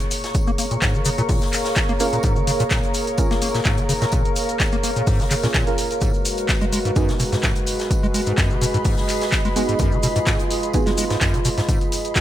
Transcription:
Already playing: A#3 G#4 A#4 C#5 F5 A#5 C#6
0.00 closed hi-hat, maracas
0.11 open hi-hat, tambourine, maracas
0.23 snare, closed hi-hat, maracas
0.34 kick, closed hi-hat, tambourine, maracas
0.47 A#3, maracas
0.58 A#3, open hi-hat, tambourine, maracas
0.71 A#2, closed hi-hat, maracas
0.82 G#2, kick, snare, clap, closed hi-hat, tambourine, maracas
0.94 D#3, maracas
1.05 C#3, open hi-hat, tambourine, maracas
1.18 A#2, closed hi-hat, maracas
1.29 A#2, kick, closed hi-hat, open hi-hat, maracas
1.42 snare, closed hi-hat, maracas
1.53 clap, open hi-hat, tambourine, maracas
1.65 snare, closed hi-hat, maracas
1.75 kick, snare, clap, closed hi-hat, tambourine, maracas
1.89 A#3, closed hi-hat, maracas
2.00 A#3 C#4 F4 G#4 A#4, open hi-hat, tambourine, maracas
2.13 A#2, closed hi-hat, maracas
2.23 G#2, kick, closed hi-hat, tambourine, maracas
2.36 D#3, maracas
2.47 C#3, open hi-hat, tambourine, maracas
2.60 A#2, closed hi-hat, maracas
2.70 A#2, kick, snare, clap, closed hi-hat, tambourine, maracas
2.83 closed hi-hat, maracas
2.94 open hi-hat, tambourine, maracas
3.07 closed hi-hat, maracas
3.18 C#4 F4 G#4 A#4, kick, closed hi-hat, tambourine, maracas
3.31 A#3, snare, closed hi-hat, maracas
3.42 A#3, open hi-hat, tambourine, maracas
3.54 A#2, snare, closed hi-hat, maracas
3.65 G#2, kick, snare, clap, closed hi-hat, tambourine, maracas
3.78 D#3, closed hi-hat, maracas
3.89 C#3, open hi-hat, tambourine, maracas
4.02 A#2, snare, closed hi-hat, maracas
4.12 A#2, kick, closed hi-hat, tambourine, maracas
4.25 closed hi-hat, maracas
4.36 open hi-hat, tambourine, maracas
4.49 closed hi-hat, maracas
4.60 kick, snare, clap, closed hi-hat, tambourine, maracas
4.72 A#3, closed hi-hat, maracas
4.83 A#3, open hi-hat, tambourine, maracas
4.96 A#2, closed hi-hat, maracas
5.07 G#2, kick, closed hi-hat, open hi-hat, maracas
5.20 D#3, snare, closed hi-hat, maracas
5.31 C#3, clap, open hi-hat, tambourine, maracas
5.43 A#2 C#4 F4 G#4 A#4, snare, closed hi-hat, maracas
5.54 A#2, kick, snare, clap, closed hi-hat, tambourine, maracas
5.67 C#4 F4 G#4 A#4, closed hi-hat, maracas
5.78 open hi-hat, tambourine, maracas
5.91 closed hi-hat, maracas
6.01 G#2 G#3 F#4 G#4 B4, kick, closed hi-hat, tambourine, maracas
6.14 maracas
6.25 open hi-hat, tambourine, maracas
6.37 closed hi-hat, maracas
6.46 D#5 B5, kick, snare, clap, closed hi-hat, tambourine, maracas
6.61 G#3, closed hi-hat, maracas
6.72 G#3, open hi-hat, tambourine, maracas
6.85 G#2, closed hi-hat, maracas
6.96 F#2 B3 D#4 F#4 G#4, kick, closed hi-hat, tambourine, maracas
7.08 C#3, snare, closed hi-hat, maracas
7.20 B2, open hi-hat, tambourine, maracas
7.32 G#2, snare, closed hi-hat, maracas
7.43 G#2, kick, snare, clap, closed hi-hat, tambourine, maracas
7.56 closed hi-hat, maracas
7.66 open hi-hat, tambourine, maracas
7.79 snare, closed hi-hat, maracas
7.91 kick, closed hi-hat, tambourine, maracas
8.03 G#3, maracas
8.14 G#3, open hi-hat, tambourine, maracas
8.26 G#2, closed hi-hat, maracas
8.38 F#2, kick, snare, clap, closed hi-hat, tambourine, maracas
8.50 C#3, maracas
8.61 B2, open hi-hat, tambourine, maracas
8.74 G#2, closed hi-hat, maracas
8.85 G#2, kick, closed hi-hat, open hi-hat, maracas
8.97 snare, closed hi-hat, maracas
9.09 clap, open hi-hat, tambourine, maracas
9.21 snare, closed hi-hat, maracas
9.32 kick, snare, clap, closed hi-hat, tambourine, maracas
9.45 G#3, closed hi-hat, maracas
9.56 G#3 B3 D#4 F#4 G#4, open hi-hat, tambourine, maracas
9.69 G#2, closed hi-hat, maracas
9.79 F#2 F4, kick, closed hi-hat, tambourine, maracas
9.92 C#3, maracas
10.03 B2, open hi-hat, tambourine, maracas
10.16 G#2, closed hi-hat, maracas
10.27 G#2, kick, snare, clap, closed hi-hat, tambourine, maracas
10.39 closed hi-hat, maracas
10.51 open hi-hat, tambourine, maracas
10.63 closed hi-hat, maracas
10.73 B3 D#4 F#4 G#4, kick, closed hi-hat, tambourine, maracas
10.86 G#3, snare, closed hi-hat, maracas
10.98 G#3, open hi-hat, tambourine, maracas
11.10 G#2, snare, closed hi-hat, maracas
11.21 F#2, kick, snare, clap, closed hi-hat, tambourine, maracas
11.34 C#3, closed hi-hat, maracas
11.45 B2, open hi-hat, tambourine, maracas
11.58 G#2, snare, closed hi-hat, maracas
11.69 G#2, kick, closed hi-hat, tambourine, maracas
11.81 closed hi-hat, maracas
11.92 open hi-hat, tambourine, maracas
12.05 closed hi-hat, maracas
12.16 kick, snare, clap, closed hi-hat, tambourine, maracas

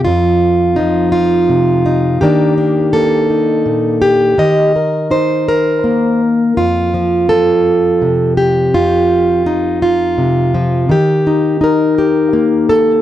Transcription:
Already playing: F3
0.05 F2 F4
0.76 F3 D#4
1.12 F4
1.49 C3
1.86 D#4
2.21 D#3 A#3 D4 G4
2.58 D4
2.93 A#3 A4
3.30 D#4
3.66 A#2
4.02 G4
4.38 D#3 D#5
4.76 A#4
5.11 D#4 C5
5.48 A#4
5.84 A#3
6.57 F2 F4
6.94 F3
7.29 F3 A4
8.02 C3
8.37 G4
8.74 F2 F4
9.46 D#4
9.82 F4
10.18 C3
10.54 F3
10.89 D#3 G4
11.27 D#4
11.61 D#4 A#4
11.98 G4
12.33 A#3
12.69 A4

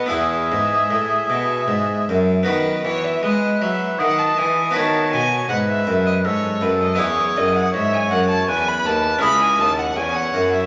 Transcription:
Already playing: B3
0.06 B3 E4 G#4
0.11 E2 G#4 E5
0.51 G#2
0.90 A2
1.30 B2
1.68 G#2
2.08 F#2
2.43 D#3 B3 F#4 B4
2.48 D#3
2.85 E3 C#5
3.04 E5
3.23 G#3 B4 D#5
3.60 F#3 E5
3.98 D#3 D#5 F#5
4.19 A5
4.37 E3 G#5
4.71 B3 F#4 B4 A5
4.75 D#3 C#5
5.12 B2 G#5
5.49 G#2 B4 F#5
5.69 E5
5.87 F#2
6.06 D#5
6.25 G#2 A4 C#5
6.61 F#2 B4
6.81 D#5
6.95 B3 E4 G#4
7.00 E2 C#5
7.37 F#2 D#5
7.56 F#5
7.72 G#2 C#5 E5
7.94 G#5
8.11 F#2 F#5
8.30 A5
8.48 E2 B4 G#5
8.68 B5
8.85 D#2 A5
9.18 C#2 C#4 E4 G#4 D#5
9.23 C#2 B5
9.42 G#5
9.59 D#2 A5
9.79 F#5
9.96 E2 C#5 G#5
10.15 F#5
10.34 F#2
10.53 E5

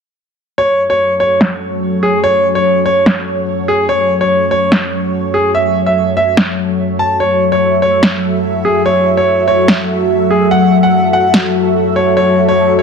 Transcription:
0.58 F#3 F#4 A4 C#5
0.90 C#5
1.20 C#5
1.41 snare
2.03 G#4
2.24 C#5
2.55 C#5
2.86 C#5
3.06 snare
3.68 G#4
3.89 C#5
4.21 C#5
4.51 C#5
4.72 snare
5.34 G#4
5.55 E5
5.86 E5
6.17 E5
6.37 snare
6.99 A5
7.20 C#5 E5
7.52 C#5
7.82 C#5
8.03 snare
8.65 G#4
8.86 C#5
9.17 C#5
9.48 C#5
9.68 snare
10.31 G#4
10.51 F#5
10.83 F#5
11.13 F#5
11.34 snare
11.96 C#5
12.17 C#5
12.48 C#5
12.79 C#5

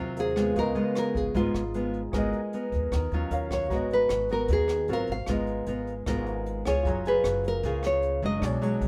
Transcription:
Already playing: D#2 C3 F#3 C4 F4 A#4 C5 F5
0.17 G#4 A#4 C5 F5, closed hi-hat
0.36 G#3 B3 F4, cross-stick, closed hi-hat
0.54 C#2 C#3 B3 F4 G#4, kick, closed hi-hat
0.59 A#4 D#5
0.75 G#3 B3 F4, closed hi-hat
0.95 A#4, cross-stick, closed hi-hat
1.15 G#1 G#4, kick, closed hi-hat
1.34 G#1 G#2 G#3 B3 F4, kick, closed hi-hat
1.54 G#1, cross-stick, closed hi-hat
1.74 G#3 B3 F4, closed hi-hat
1.94 closed hi-hat
2.12 G#1 G#3 B3 F#4 G#4 A#4, kick, cross-stick, closed hi-hat
2.18 D#5
2.33 closed hi-hat
2.53 B3 A#4, closed hi-hat
2.72 D#2, kick, closed hi-hat
2.92 D#2 D#3, kick, cross-stick, closed hi-hat
3.11 D#2 F#3 C#4 F4, closed hi-hat
3.31 D#2 A#4 C#5 F5, closed hi-hat
3.51 C#5, kick, cross-stick, closed hi-hat
3.68 G#1 G#3 B3 F#4 A#5, kick, closed hi-hat
3.72 F#4 A#4 D#5
3.90 B4, closed hi-hat
4.09 G#1, cross-stick, closed hi-hat
4.29 B3 F#4 A#4, closed hi-hat
4.48 D#2 D#3, kick, closed hi-hat
4.53 G#4
4.68 cross-stick, closed hi-hat
4.88 G#1 F#3 C4 F4 F#4 A#4 C5, closed hi-hat
4.92 A#4 F5
5.07 G#1, closed hi-hat
5.12 F5
5.26 G#1 G#3 B3 F4 A#4, kick, cross-stick, closed hi-hat
5.32 D#5
5.47 closed hi-hat
5.66 G#1 B3 F4 A#4, closed hi-hat
5.87 closed hi-hat
6.06 G#1 G#3 B3 F4 A#4, kick, cross-stick, closed hi-hat
6.26 closed hi-hat
6.46 closed hi-hat
6.65 C#2 F4 G#4 C#5, cross-stick, closed hi-hat
6.83 F#1 F#3 F4 G#4 A#5, kick, closed hi-hat
6.89 C#5
7.05 F4 G#4 B4, closed hi-hat
7.24 F#1, cross-stick, closed hi-hat
7.44 A#4, closed hi-hat
7.63 C#2 C#3 A#3 F4 G#4, kick, closed hi-hat
7.83 C#5, cross-stick, closed hi-hat
8.02 closed hi-hat
8.22 F#1 F#3 G#3 D4 D#5, closed hi-hat
8.39 B1 B2 D4 F#4 G#4, kick, cross-stick, closed hi-hat
8.45 C#5 D5
8.61 F#3 G#3 D4 C#5, closed hi-hat
8.81 B1, closed hi-hat

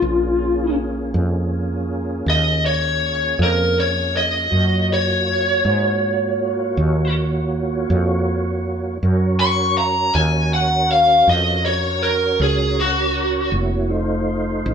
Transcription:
Already playing: F4
0.01 A#1 A#3 C#4 F4 G#4
1.14 F2
2.26 D#2 D#5
2.66 C#5
3.39 F2
3.43 A#4
3.80 C#5
4.17 D#5
4.50 F#2 A#3 F4 F#4 C#5
4.93 C#5
5.65 G#2
6.77 D#2
7.90 F2
9.03 F#2 C#4 F#4 A#4 C#5
9.40 C#6
9.78 A#5
10.15 D#2 G#5
10.54 F#5
10.91 F5
11.27 F2 D#5
11.66 C#5
12.02 A#4
12.40 C#2 G#4
12.80 F#4
13.52 F1 A#3 E4 F#4 C#5
13.90 A3 D#4 F4 C5
14.66 A1

